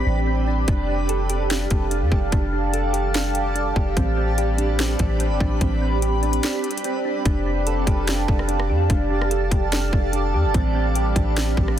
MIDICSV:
0, 0, Header, 1, 6, 480
1, 0, Start_track
1, 0, Tempo, 410959
1, 794, Time_signature, 4, 2, 24, 8
1, 13773, End_track
2, 0, Start_track
2, 0, Title_t, "Ambient pad"
2, 0, Program_c, 0, 92
2, 0, Note_on_c, 0, 60, 69
2, 0, Note_on_c, 0, 67, 82
2, 0, Note_on_c, 0, 74, 72
2, 0, Note_on_c, 0, 83, 87
2, 755, Note_off_c, 0, 83, 0
2, 756, Note_off_c, 0, 60, 0
2, 793, Note_on_c, 0, 77, 70
2, 794, Note_on_c, 0, 81, 89
2, 4587, Note_off_c, 0, 74, 0
2, 4595, Note_off_c, 0, 77, 0
2, 4596, Note_off_c, 0, 81, 0
2, 4633, Note_on_c, 0, 60, 74
2, 4633, Note_on_c, 0, 74, 70
2, 4633, Note_on_c, 0, 83, 87
2, 8427, Note_off_c, 0, 67, 0
2, 8435, Note_off_c, 0, 60, 0
2, 8435, Note_off_c, 0, 74, 0
2, 8435, Note_off_c, 0, 83, 0
2, 8473, Note_on_c, 0, 67, 82
2, 8474, Note_on_c, 0, 74, 71
2, 8474, Note_on_c, 0, 77, 74
2, 8474, Note_on_c, 0, 81, 87
2, 12275, Note_off_c, 0, 77, 0
2, 12275, Note_off_c, 0, 81, 0
2, 12314, Note_on_c, 0, 60, 72
2, 12315, Note_on_c, 0, 83, 89
2, 13773, Note_off_c, 0, 60, 0
2, 13773, Note_off_c, 0, 67, 0
2, 13773, Note_off_c, 0, 74, 0
2, 13773, Note_off_c, 0, 83, 0
2, 13773, End_track
3, 0, Start_track
3, 0, Title_t, "Synth keys"
3, 0, Program_c, 1, 88
3, 0, Note_on_c, 1, 60, 79
3, 0, Note_on_c, 1, 62, 82
3, 0, Note_on_c, 1, 67, 85
3, 303, Note_off_c, 1, 60, 0
3, 317, Note_on_c, 1, 60, 74
3, 539, Note_off_c, 1, 62, 0
3, 553, Note_on_c, 1, 62, 78
3, 782, Note_off_c, 1, 62, 0
3, 792, Note_off_c, 1, 67, 0
3, 795, Note_off_c, 1, 60, 0
3, 796, Note_on_c, 1, 62, 87
3, 1022, Note_off_c, 1, 62, 0
3, 1036, Note_on_c, 1, 62, 68
3, 1275, Note_on_c, 1, 69, 84
3, 1515, Note_on_c, 1, 67, 84
3, 1744, Note_off_c, 1, 62, 0
3, 1758, Note_on_c, 1, 62, 84
3, 2214, Note_off_c, 1, 62, 0
3, 2228, Note_on_c, 1, 62, 77
3, 2463, Note_off_c, 1, 67, 0
3, 2477, Note_on_c, 1, 67, 75
3, 2698, Note_off_c, 1, 62, 0
3, 2712, Note_on_c, 1, 62, 93
3, 2714, Note_off_c, 1, 69, 0
3, 2939, Note_off_c, 1, 62, 0
3, 2953, Note_on_c, 1, 62, 83
3, 3193, Note_on_c, 1, 69, 81
3, 3409, Note_off_c, 1, 67, 0
3, 3423, Note_on_c, 1, 67, 81
3, 3659, Note_off_c, 1, 62, 0
3, 3673, Note_on_c, 1, 62, 82
3, 4135, Note_off_c, 1, 62, 0
3, 4149, Note_on_c, 1, 62, 78
3, 4384, Note_off_c, 1, 67, 0
3, 4398, Note_on_c, 1, 67, 82
3, 4631, Note_off_c, 1, 62, 0
3, 4632, Note_on_c, 1, 60, 90
3, 4633, Note_off_c, 1, 69, 0
3, 4636, Note_off_c, 1, 67, 0
3, 4858, Note_off_c, 1, 60, 0
3, 4872, Note_on_c, 1, 60, 84
3, 5118, Note_on_c, 1, 67, 91
3, 5350, Note_on_c, 1, 62, 84
3, 5576, Note_off_c, 1, 60, 0
3, 5590, Note_on_c, 1, 60, 91
3, 6066, Note_off_c, 1, 60, 0
3, 6080, Note_on_c, 1, 60, 84
3, 6304, Note_off_c, 1, 62, 0
3, 6318, Note_on_c, 1, 62, 82
3, 6538, Note_off_c, 1, 60, 0
3, 6552, Note_on_c, 1, 60, 88
3, 6556, Note_off_c, 1, 67, 0
3, 6779, Note_off_c, 1, 60, 0
3, 6793, Note_on_c, 1, 60, 84
3, 7034, Note_on_c, 1, 67, 83
3, 7256, Note_off_c, 1, 62, 0
3, 7270, Note_on_c, 1, 62, 81
3, 7506, Note_off_c, 1, 60, 0
3, 7520, Note_on_c, 1, 60, 77
3, 7985, Note_off_c, 1, 60, 0
3, 7999, Note_on_c, 1, 60, 76
3, 8221, Note_off_c, 1, 62, 0
3, 8235, Note_on_c, 1, 62, 75
3, 8463, Note_off_c, 1, 62, 0
3, 8474, Note_off_c, 1, 67, 0
3, 8477, Note_off_c, 1, 60, 0
3, 8477, Note_on_c, 1, 62, 91
3, 8703, Note_off_c, 1, 62, 0
3, 8717, Note_on_c, 1, 62, 72
3, 8956, Note_on_c, 1, 69, 87
3, 9196, Note_on_c, 1, 67, 82
3, 9424, Note_off_c, 1, 62, 0
3, 9438, Note_on_c, 1, 62, 89
3, 9893, Note_off_c, 1, 62, 0
3, 9907, Note_on_c, 1, 62, 82
3, 10142, Note_off_c, 1, 67, 0
3, 10156, Note_on_c, 1, 67, 81
3, 10377, Note_off_c, 1, 62, 0
3, 10391, Note_on_c, 1, 62, 98
3, 10395, Note_off_c, 1, 69, 0
3, 10619, Note_off_c, 1, 62, 0
3, 10633, Note_on_c, 1, 62, 82
3, 10873, Note_on_c, 1, 69, 82
3, 11090, Note_off_c, 1, 67, 0
3, 11104, Note_on_c, 1, 67, 81
3, 11342, Note_off_c, 1, 62, 0
3, 11356, Note_on_c, 1, 62, 88
3, 11817, Note_off_c, 1, 62, 0
3, 11831, Note_on_c, 1, 62, 80
3, 12066, Note_off_c, 1, 67, 0
3, 12080, Note_on_c, 1, 67, 84
3, 12312, Note_off_c, 1, 62, 0
3, 12314, Note_off_c, 1, 69, 0
3, 12314, Note_on_c, 1, 60, 95
3, 12317, Note_off_c, 1, 67, 0
3, 12540, Note_off_c, 1, 60, 0
3, 12554, Note_on_c, 1, 60, 81
3, 12800, Note_on_c, 1, 67, 91
3, 13032, Note_on_c, 1, 62, 85
3, 13257, Note_off_c, 1, 60, 0
3, 13272, Note_on_c, 1, 60, 89
3, 13746, Note_off_c, 1, 60, 0
3, 13773, Note_off_c, 1, 62, 0
3, 13773, Note_off_c, 1, 67, 0
3, 13773, End_track
4, 0, Start_track
4, 0, Title_t, "Synth texture"
4, 0, Program_c, 2, 99
4, 0, Note_on_c, 2, 55, 76
4, 0, Note_on_c, 2, 60, 70
4, 0, Note_on_c, 2, 62, 71
4, 0, Note_on_c, 2, 71, 83
4, 754, Note_off_c, 2, 60, 0
4, 754, Note_off_c, 2, 71, 0
4, 794, Note_on_c, 2, 69, 87
4, 4587, Note_off_c, 2, 55, 0
4, 4587, Note_off_c, 2, 62, 0
4, 4596, Note_off_c, 2, 69, 0
4, 4632, Note_on_c, 2, 55, 76
4, 4633, Note_on_c, 2, 60, 69
4, 4633, Note_on_c, 2, 62, 73
4, 4633, Note_on_c, 2, 71, 84
4, 8435, Note_off_c, 2, 55, 0
4, 8435, Note_off_c, 2, 60, 0
4, 8435, Note_off_c, 2, 62, 0
4, 8435, Note_off_c, 2, 71, 0
4, 8475, Note_on_c, 2, 62, 72
4, 8475, Note_on_c, 2, 69, 83
4, 8476, Note_on_c, 2, 55, 75
4, 12276, Note_off_c, 2, 69, 0
4, 12313, Note_on_c, 2, 71, 83
4, 12314, Note_on_c, 2, 60, 68
4, 13773, Note_off_c, 2, 55, 0
4, 13773, Note_off_c, 2, 60, 0
4, 13773, Note_off_c, 2, 62, 0
4, 13773, Note_off_c, 2, 71, 0
4, 13773, End_track
5, 0, Start_track
5, 0, Title_t, "808-style bass"
5, 0, Program_c, 3, 38
5, 74, Note_on_c, 3, 33, 98
5, 765, Note_off_c, 3, 33, 0
5, 793, Note_on_c, 3, 29, 120
5, 1947, Note_off_c, 3, 29, 0
5, 1995, Note_on_c, 3, 29, 106
5, 2353, Note_on_c, 3, 41, 102
5, 2371, Note_off_c, 3, 29, 0
5, 2465, Note_off_c, 3, 41, 0
5, 2472, Note_on_c, 3, 29, 101
5, 2703, Note_off_c, 3, 29, 0
5, 2714, Note_on_c, 3, 29, 111
5, 4347, Note_off_c, 3, 29, 0
5, 4392, Note_on_c, 3, 29, 103
5, 4623, Note_off_c, 3, 29, 0
5, 4634, Note_on_c, 3, 33, 115
5, 5787, Note_off_c, 3, 33, 0
5, 5836, Note_on_c, 3, 33, 103
5, 6194, Note_on_c, 3, 31, 95
5, 6212, Note_off_c, 3, 33, 0
5, 6305, Note_off_c, 3, 31, 0
5, 6312, Note_on_c, 3, 33, 101
5, 6543, Note_off_c, 3, 33, 0
5, 6554, Note_on_c, 3, 33, 117
5, 7475, Note_off_c, 3, 33, 0
5, 8474, Note_on_c, 3, 29, 111
5, 9165, Note_off_c, 3, 29, 0
5, 9192, Note_on_c, 3, 29, 108
5, 9654, Note_off_c, 3, 29, 0
5, 9675, Note_on_c, 3, 29, 107
5, 10154, Note_on_c, 3, 41, 96
5, 10171, Note_off_c, 3, 29, 0
5, 10382, Note_off_c, 3, 41, 0
5, 10394, Note_on_c, 3, 29, 115
5, 11085, Note_off_c, 3, 29, 0
5, 11113, Note_on_c, 3, 29, 113
5, 11574, Note_off_c, 3, 29, 0
5, 11596, Note_on_c, 3, 29, 104
5, 12075, Note_on_c, 3, 41, 100
5, 12092, Note_off_c, 3, 29, 0
5, 12195, Note_on_c, 3, 29, 102
5, 12213, Note_off_c, 3, 41, 0
5, 12308, Note_off_c, 3, 29, 0
5, 12315, Note_on_c, 3, 33, 113
5, 13006, Note_off_c, 3, 33, 0
5, 13033, Note_on_c, 3, 33, 113
5, 13494, Note_off_c, 3, 33, 0
5, 13517, Note_on_c, 3, 33, 106
5, 13773, Note_off_c, 3, 33, 0
5, 13773, End_track
6, 0, Start_track
6, 0, Title_t, "Drums"
6, 792, Note_on_c, 9, 42, 78
6, 793, Note_on_c, 9, 36, 108
6, 909, Note_off_c, 9, 42, 0
6, 910, Note_off_c, 9, 36, 0
6, 1274, Note_on_c, 9, 42, 76
6, 1391, Note_off_c, 9, 42, 0
6, 1513, Note_on_c, 9, 42, 79
6, 1630, Note_off_c, 9, 42, 0
6, 1752, Note_on_c, 9, 42, 84
6, 1764, Note_on_c, 9, 38, 119
6, 1869, Note_off_c, 9, 42, 0
6, 1881, Note_off_c, 9, 38, 0
6, 1991, Note_on_c, 9, 42, 65
6, 1995, Note_on_c, 9, 36, 92
6, 2108, Note_off_c, 9, 42, 0
6, 2112, Note_off_c, 9, 36, 0
6, 2233, Note_on_c, 9, 42, 70
6, 2350, Note_off_c, 9, 42, 0
6, 2472, Note_on_c, 9, 36, 90
6, 2589, Note_off_c, 9, 36, 0
6, 2713, Note_on_c, 9, 42, 76
6, 2714, Note_on_c, 9, 36, 111
6, 2830, Note_off_c, 9, 42, 0
6, 2831, Note_off_c, 9, 36, 0
6, 3195, Note_on_c, 9, 42, 74
6, 3311, Note_off_c, 9, 42, 0
6, 3433, Note_on_c, 9, 42, 77
6, 3550, Note_off_c, 9, 42, 0
6, 3671, Note_on_c, 9, 42, 85
6, 3683, Note_on_c, 9, 38, 116
6, 3788, Note_off_c, 9, 42, 0
6, 3800, Note_off_c, 9, 38, 0
6, 3912, Note_on_c, 9, 42, 66
6, 4028, Note_off_c, 9, 42, 0
6, 4154, Note_on_c, 9, 42, 68
6, 4270, Note_off_c, 9, 42, 0
6, 4392, Note_on_c, 9, 36, 90
6, 4509, Note_off_c, 9, 36, 0
6, 4634, Note_on_c, 9, 36, 111
6, 4634, Note_on_c, 9, 42, 71
6, 4750, Note_off_c, 9, 42, 0
6, 4751, Note_off_c, 9, 36, 0
6, 5115, Note_on_c, 9, 42, 73
6, 5232, Note_off_c, 9, 42, 0
6, 5354, Note_on_c, 9, 42, 79
6, 5471, Note_off_c, 9, 42, 0
6, 5592, Note_on_c, 9, 42, 84
6, 5604, Note_on_c, 9, 38, 118
6, 5709, Note_off_c, 9, 42, 0
6, 5721, Note_off_c, 9, 38, 0
6, 5831, Note_on_c, 9, 42, 67
6, 5835, Note_on_c, 9, 36, 90
6, 5948, Note_off_c, 9, 42, 0
6, 5952, Note_off_c, 9, 36, 0
6, 6073, Note_on_c, 9, 42, 70
6, 6190, Note_off_c, 9, 42, 0
6, 6312, Note_on_c, 9, 36, 91
6, 6429, Note_off_c, 9, 36, 0
6, 6554, Note_on_c, 9, 36, 109
6, 6554, Note_on_c, 9, 42, 75
6, 6670, Note_off_c, 9, 42, 0
6, 6671, Note_off_c, 9, 36, 0
6, 7035, Note_on_c, 9, 42, 76
6, 7152, Note_off_c, 9, 42, 0
6, 7274, Note_on_c, 9, 42, 46
6, 7391, Note_off_c, 9, 42, 0
6, 7394, Note_on_c, 9, 42, 78
6, 7511, Note_off_c, 9, 42, 0
6, 7512, Note_on_c, 9, 42, 86
6, 7524, Note_on_c, 9, 38, 123
6, 7629, Note_off_c, 9, 42, 0
6, 7641, Note_off_c, 9, 38, 0
6, 7754, Note_on_c, 9, 42, 41
6, 7833, Note_off_c, 9, 42, 0
6, 7833, Note_on_c, 9, 42, 53
6, 7913, Note_off_c, 9, 42, 0
6, 7913, Note_on_c, 9, 42, 69
6, 7993, Note_off_c, 9, 42, 0
6, 7993, Note_on_c, 9, 42, 70
6, 8110, Note_off_c, 9, 42, 0
6, 8474, Note_on_c, 9, 36, 113
6, 8474, Note_on_c, 9, 42, 81
6, 8591, Note_off_c, 9, 36, 0
6, 8591, Note_off_c, 9, 42, 0
6, 8954, Note_on_c, 9, 42, 75
6, 9071, Note_off_c, 9, 42, 0
6, 9192, Note_on_c, 9, 36, 94
6, 9194, Note_on_c, 9, 42, 77
6, 9309, Note_off_c, 9, 36, 0
6, 9310, Note_off_c, 9, 42, 0
6, 9431, Note_on_c, 9, 42, 81
6, 9443, Note_on_c, 9, 38, 121
6, 9548, Note_off_c, 9, 42, 0
6, 9560, Note_off_c, 9, 38, 0
6, 9675, Note_on_c, 9, 36, 95
6, 9792, Note_off_c, 9, 36, 0
6, 9802, Note_on_c, 9, 37, 87
6, 9912, Note_on_c, 9, 42, 71
6, 9919, Note_off_c, 9, 37, 0
6, 10029, Note_off_c, 9, 42, 0
6, 10040, Note_on_c, 9, 37, 97
6, 10157, Note_off_c, 9, 37, 0
6, 10393, Note_on_c, 9, 42, 79
6, 10394, Note_on_c, 9, 36, 115
6, 10510, Note_off_c, 9, 36, 0
6, 10510, Note_off_c, 9, 42, 0
6, 10763, Note_on_c, 9, 37, 94
6, 10875, Note_on_c, 9, 42, 80
6, 10880, Note_off_c, 9, 37, 0
6, 10992, Note_off_c, 9, 42, 0
6, 11113, Note_on_c, 9, 36, 98
6, 11114, Note_on_c, 9, 42, 77
6, 11230, Note_off_c, 9, 36, 0
6, 11231, Note_off_c, 9, 42, 0
6, 11353, Note_on_c, 9, 42, 82
6, 11365, Note_on_c, 9, 38, 127
6, 11470, Note_off_c, 9, 42, 0
6, 11482, Note_off_c, 9, 38, 0
6, 11596, Note_on_c, 9, 36, 96
6, 11713, Note_off_c, 9, 36, 0
6, 11834, Note_on_c, 9, 42, 69
6, 11951, Note_off_c, 9, 42, 0
6, 12315, Note_on_c, 9, 36, 118
6, 12315, Note_on_c, 9, 42, 79
6, 12432, Note_off_c, 9, 36, 0
6, 12432, Note_off_c, 9, 42, 0
6, 12795, Note_on_c, 9, 42, 75
6, 12912, Note_off_c, 9, 42, 0
6, 13033, Note_on_c, 9, 36, 94
6, 13035, Note_on_c, 9, 42, 78
6, 13150, Note_off_c, 9, 36, 0
6, 13152, Note_off_c, 9, 42, 0
6, 13274, Note_on_c, 9, 42, 84
6, 13286, Note_on_c, 9, 38, 121
6, 13391, Note_off_c, 9, 42, 0
6, 13403, Note_off_c, 9, 38, 0
6, 13516, Note_on_c, 9, 36, 98
6, 13633, Note_off_c, 9, 36, 0
6, 13644, Note_on_c, 9, 37, 89
6, 13761, Note_off_c, 9, 37, 0
6, 13773, End_track
0, 0, End_of_file